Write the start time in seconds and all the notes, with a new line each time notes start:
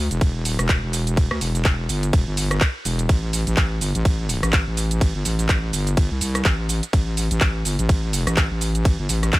0.11 E1, closed hi-hat, shaker
0.21 kick, closed hi-hat, ride, shaker
0.45 open hi-hat, shaker
0.59 E1, cross-stick, closed hi-hat, shaker
0.69 kick, clap, closed hi-hat, ride, shaker
0.83 E1
0.93 open hi-hat, shaker
1.07 closed hi-hat, shaker
1.17 kick, closed hi-hat, ride, shaker
1.31 D2, cross-stick
1.41 E1, open hi-hat, shaker
1.55 closed hi-hat, shaker
1.65 kick, clap, closed hi-hat, ride, shaker
1.89 G1, open hi-hat, shaker
2.03 closed hi-hat, shaker
2.13 E1, kick, closed hi-hat, ride, shaker
2.27 G1
2.37 open hi-hat, shaker
2.51 cross-stick, closed hi-hat, shaker
2.61 kick, clap, closed hi-hat, ride, shaker
2.85 E1, open hi-hat, shaker
2.99 closed hi-hat, shaker
3.09 A1, kick, closed hi-hat, ride, shaker
3.33 open hi-hat, shaker
3.47 A1, closed hi-hat, shaker
3.57 A1, kick, clap, closed hi-hat, ride, shaker
3.81 G1, open hi-hat, shaker
3.95 A1, closed hi-hat, shaker
4.05 kick, closed hi-hat, ride, shaker
4.29 open hi-hat, shaker
4.43 A1, cross-stick, closed hi-hat, shaker
4.53 kick, clap, closed hi-hat, ride, shaker
4.67 A1
4.77 open hi-hat, shaker
4.91 closed hi-hat, shaker
5.01 kick, closed hi-hat, ride, shaker
5.15 G1
5.25 A1, open hi-hat, shaker
5.39 closed hi-hat, shaker
5.49 kick, clap, closed hi-hat, ride, shaker
5.73 G1, open hi-hat, shaker
5.87 closed hi-hat, shaker
5.97 kick, closed hi-hat, ride, shaker
6.11 C2
6.21 C2, open hi-hat, shaker
6.35 cross-stick, closed hi-hat, shaker
6.45 A1, kick, clap, closed hi-hat, ride, shaker
6.69 open hi-hat, shaker
6.83 closed hi-hat, shaker
6.93 A1, kick, closed hi-hat, ride, shaker
7.17 open hi-hat, shaker
7.31 A1, closed hi-hat, shaker
7.41 A1, kick, clap, closed hi-hat, ride, shaker
7.65 G1, open hi-hat, shaker
7.79 A1, closed hi-hat, shaker
7.89 kick, closed hi-hat, ride, shaker
8.13 open hi-hat, shaker
8.27 A1, cross-stick, closed hi-hat, shaker
8.37 kick, clap, closed hi-hat, ride, shaker
8.51 A1
8.61 open hi-hat, shaker
8.75 closed hi-hat, shaker
8.85 kick, closed hi-hat, ride, shaker
8.99 G1
9.09 A1, open hi-hat, shaker
9.23 cross-stick, closed hi-hat, shaker
9.33 kick, clap, closed hi-hat, ride, shaker